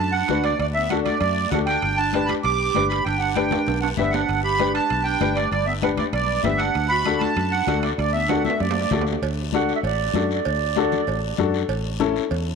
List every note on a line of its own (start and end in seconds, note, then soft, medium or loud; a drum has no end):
0.00 0.22 F#2 medium
0.00 0.11 D4 medium
0.00 0.13 A5 medium
0.12 0.42 D4 medium
0.12 0.44 F#5 medium
0.28 0.53 D2 medium
0.28 0.50 D4 medium
0.28 0.51 F#4 medium
0.28 0.51 B4 medium
0.28 high conga medium
0.28 high timbale medium
0.28 short guiro medium
0.44 0.58 A3 medium
0.44 0.58 D5 medium
0.44 high timbale medium
0.44 short guiro medium
0.59 1.08 D2 medium
0.59 0.67 A3 medium
0.59 0.66 D5 medium
0.59 high timbale medium
0.59 long guiro medium
0.74 0.90 B3 medium
0.74 0.89 E5 medium
0.89 1.12 D4 medium
0.89 0.99 D4 medium
0.89 1.12 F#4 medium
0.89 1.13 A4 medium
0.89 0.96 F#5 medium
0.89 high conga medium
0.89 high timbale medium
0.89 short guiro medium
1.04 1.21 A3 medium
1.04 1.18 D5 medium
1.04 high conga medium
1.04 high timbale medium
1.04 short guiro medium
1.20 1.45 F#2 medium
1.20 1.50 A3 medium
1.20 1.49 D5 loud
1.20 high timbale medium
1.20 long guiro medium
1.50 1.76 D2 medium
1.50 1.60 D4 medium
1.50 1.74 D4 medium
1.50 1.74 F#4 medium
1.50 1.74 A4 medium
1.50 1.57 F#5 medium
1.50 high conga medium
1.50 low conga medium
1.50 high timbale medium
1.50 low timbale medium
1.50 short guiro medium
1.66 1.96 D4 medium
1.66 1.98 G5 loud
1.66 high timbale medium
1.66 short guiro medium
1.82 2.32 G1 medium
1.82 high timbale medium
1.82 long guiro medium
1.97 2.27 D4 medium
1.97 2.29 A5 loud
2.13 2.36 D4 medium
2.13 2.36 G4 medium
2.13 2.36 B4 medium
2.13 high conga medium
2.13 high timbale medium
2.13 short guiro medium
2.26 2.35 G4 medium
2.26 2.33 B5 loud
2.26 high conga medium
2.26 high timbale medium
2.26 short guiro medium
2.42 2.69 B1 medium
2.42 2.86 G4 medium
2.42 2.87 D6 loud
2.42 high timbale medium
2.42 long guiro medium
2.75 3.00 G1 medium
2.75 2.97 D4 medium
2.75 2.97 G4 medium
2.75 2.97 B4 medium
2.75 high conga medium
2.75 high timbale medium
2.75 low timbale medium
2.75 short guiro medium
2.89 3.05 G4 medium
2.89 3.04 B5 medium
2.89 high timbale medium
2.89 short guiro medium
3.04 3.55 G1 medium
3.04 3.19 D4 medium
3.04 3.21 G5 medium
3.04 high timbale medium
3.04 long guiro medium
3.18 3.35 D4 medium
3.18 3.36 F#5 medium
3.34 3.79 D4 medium
3.34 3.58 D4 medium
3.34 3.58 G4 medium
3.34 3.58 B4 medium
3.34 3.78 G5 medium
3.34 high conga medium
3.34 high timbale medium
3.34 short guiro medium
3.51 high conga medium
3.51 low conga medium
3.51 high timbale medium
3.51 short guiro medium
3.67 3.92 B1 medium
3.67 high timbale medium
3.67 long guiro medium
3.81 3.89 D4 medium
3.81 3.88 F#5 medium
3.81 high timbale medium
3.97 4.23 G1 medium
3.97 4.12 B3 medium
3.97 4.20 D4 medium
3.97 4.20 G4 medium
3.97 4.20 B4 medium
3.97 4.12 E5 medium
3.97 high conga medium
3.97 low conga medium
3.97 short guiro medium
4.10 4.41 D4 medium
4.10 4.40 F#5 medium
4.10 low timbale medium
4.10 short guiro medium
4.29 4.78 G1 medium
4.29 high timbale medium
4.29 long guiro medium
4.43 4.72 G4 medium
4.43 4.73 B5 loud
4.59 4.81 D4 medium
4.59 4.82 G4 medium
4.59 4.82 B4 medium
4.59 high conga medium
4.59 high timbale medium
4.59 short guiro medium
4.74 5.03 D4 medium
4.74 5.07 A5 loud
4.74 high timbale medium
4.74 short guiro medium
4.90 5.15 B1 medium
4.90 high timbale medium
4.90 long guiro medium
5.04 5.34 D4 medium
5.04 5.37 G5 medium
5.20 5.45 G1 medium
5.20 5.43 D4 medium
5.20 5.43 G4 medium
5.20 5.43 B4 medium
5.20 high conga medium
5.20 high timbale medium
5.20 short guiro medium
5.35 5.50 A3 medium
5.35 5.49 D5 medium
5.35 high timbale medium
5.35 short guiro medium
5.51 6.01 G1 medium
5.51 5.66 G3 medium
5.51 5.66 D5 medium
5.51 high timbale medium
5.51 long guiro medium
5.66 5.74 B3 medium
5.66 5.73 E5 medium
5.82 6.04 D4 medium
5.82 5.90 D4 medium
5.82 6.04 G4 medium
5.82 6.05 B4 medium
5.82 5.90 F#5 medium
5.82 high conga medium
5.82 high timbale medium
5.82 short guiro medium
5.97 6.05 A3 medium
5.97 6.05 D5 medium
5.97 high conga medium
5.97 low conga medium
5.97 high timbale medium
5.97 short guiro medium
6.13 6.38 B1 medium
6.13 6.42 G3 medium
6.13 6.42 D5 medium
6.13 high timbale medium
6.13 long guiro medium
6.43 6.68 G1 medium
6.43 6.58 B3 medium
6.43 6.66 D4 medium
6.43 6.66 G4 medium
6.43 6.66 B4 medium
6.43 6.60 E5 medium
6.43 high conga medium
6.43 low conga medium
6.43 high timbale medium
6.43 low timbale medium
6.43 short guiro medium
6.57 6.88 D4 medium
6.57 6.91 F#5 medium
6.57 high timbale medium
6.57 short guiro medium
6.75 7.25 D2 medium
6.75 high timbale medium
6.75 long guiro medium
6.89 7.19 F#4 medium
6.89 7.22 B5 loud
7.05 7.28 D4 medium
7.05 7.28 F#4 medium
7.05 7.28 A4 medium
7.05 high conga medium
7.05 high timbale medium
7.05 short guiro medium
7.19 7.50 D4 medium
7.19 7.52 A5 loud
7.19 high conga medium
7.19 high timbale medium
7.19 short guiro medium
7.36 7.61 F#2 medium
7.36 high timbale medium
7.36 long guiro medium
7.51 7.80 D4 medium
7.51 7.84 F#5 medium
7.67 7.92 D2 medium
7.67 7.89 D4 medium
7.67 7.90 F#4 medium
7.67 7.90 A4 medium
7.67 high conga medium
7.67 high timbale medium
7.67 short guiro medium
7.81 7.88 A3 medium
7.81 7.91 D5 medium
7.81 high timbale medium
7.81 short guiro medium
7.97 8.48 D2 medium
7.97 8.12 A3 medium
7.97 8.13 D5 medium
7.97 high timbale medium
7.97 long guiro medium
8.13 8.26 B3 medium
8.13 8.29 E5 medium
8.27 8.43 D4 medium
8.27 8.52 D4 medium
8.27 8.52 F#4 medium
8.27 8.43 F#5 medium
8.27 high conga medium
8.27 high timbale medium
8.27 short guiro medium
8.31 8.52 A4 medium
8.44 8.59 B3 medium
8.44 8.60 E5 medium
8.44 high conga medium
8.44 short guiro medium
8.50 high timbale medium
8.60 8.85 F#2 medium
8.60 9.03 A3 medium
8.60 9.04 D5 medium
8.60 low timbale medium
8.60 long guiro medium
8.71 low timbale medium
8.81 low timbale medium
8.91 9.16 D2 medium
8.91 9.13 D4 medium
8.91 9.14 F#4 medium
8.91 9.14 A4 medium
8.91 high conga medium
8.91 low conga medium
8.91 low timbale medium
8.91 short guiro medium
9.01 low timbale medium
9.07 short guiro medium
9.13 low timbale medium
9.22 9.72 D2 medium
9.22 cowbell loud
9.22 long guiro medium
9.53 9.75 D4 medium
9.53 9.75 F#4 medium
9.53 9.75 A4 medium
9.53 9.73 F#5 loud
9.53 high conga medium
9.53 short guiro medium
9.69 short guiro medium
9.75 9.80 E5 medium
9.83 10.08 A1 medium
9.83 10.28 D5 medium
9.83 cowbell medium
9.83 long guiro medium
10.14 10.39 F#2 medium
10.14 10.36 D4 medium
10.14 10.37 F#4 medium
10.14 10.37 A4 medium
10.14 high conga medium
10.14 short guiro medium
10.31 11.51 D5 medium
10.31 short guiro medium
10.45 10.95 D2 medium
10.45 cowbell medium
10.45 long guiro medium
10.76 10.98 D4 medium
10.76 10.98 F#4 medium
10.76 10.99 A4 loud
10.76 high conga medium
10.76 short guiro medium
10.92 low conga medium
10.92 short guiro medium
11.07 11.32 A1 medium
11.07 cowbell medium
11.07 long guiro medium
11.38 11.63 F#2 medium
11.38 11.60 D4 medium
11.38 11.60 F#4 medium
11.38 11.60 A4 medium
11.38 high conga medium
11.38 low conga medium
11.38 short guiro medium
11.54 short guiro medium
11.68 12.18 A1 medium
11.68 cowbell loud
11.68 long guiro medium
12.00 12.21 C#4 medium
12.00 12.22 E4 medium
12.00 12.22 A4 loud
12.00 high conga medium
12.00 short guiro medium
12.16 short guiro medium
12.31 12.55 E2 medium
12.31 cowbell medium
12.31 long guiro medium